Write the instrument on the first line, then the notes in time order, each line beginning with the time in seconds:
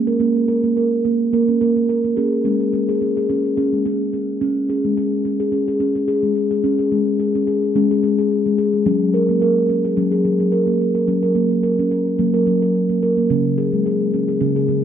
steel tongue drum
0.07 A#4
0.20 A#3 C#4
0.48 A#4
0.64 A#3
0.77 A#4
1.05 A#3
1.33 A#3 A#4
1.48 C#4
1.61 A#3 A#4
1.76 A#3
1.89 A#4
2.04 A#3
2.17 C#4 G#4
2.45 G#3 C#4
2.60 G#4
2.73 C#4
2.89 G#4
3.01 C#4
3.17 G#4
3.29 C#4
3.57 C#4 G#4
3.73 G#3
3.86 C#4 G#4
4.13 C#4
4.41 C#4
4.69 G#4
4.84 G#3
4.97 G#4
5.25 C#4
5.40 G#4
5.52 C#4
5.68 G#4
5.80 C#4
5.95 C#4
6.08 G#4
6.23 G#3
6.51 G#4
6.64 C#4
6.79 G#4
6.92 G#3
7.19 G#4
7.35 C#4
7.47 G#4
7.75 G#3 C#4
7.91 G#4
8.03 C#4
8.19 G#4
8.46 G#3
8.58 G#4
8.73 G#3
8.86 F#3 C#4
9.14 A#4
9.29 A#3
9.42 A#4
9.69 C#4
9.85 G#4
9.97 F#3 C#4
10.12 G#4
10.25 F#3
10.40 C#4
10.52 A#4
10.67 A#3
10.95 A#4
11.08 F#3 C#4
11.23 A#4
11.35 A#3
11.63 A#4
11.79 C#4
11.91 A#4
12.19 F#3 A#3
12.34 A#4
12.47 F#3 C#4
12.62 A#4
12.89 A#3
13.03 A#4
13.17 A#3
13.30 C#3 C#4
13.58 G#4
13.73 G#3
13.86 G#4
14.14 C#4
14.28 G#4
14.41 C#3 C#4
14.56 G#4
14.68 C#3